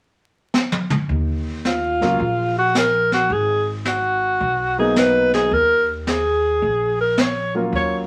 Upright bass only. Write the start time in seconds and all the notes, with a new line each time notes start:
1.09 D#2
2.01 C#2
2.20 A#1
3.30 G#1
4.41 B1
5.51 D#2
6.62 A#1
7.72 D#2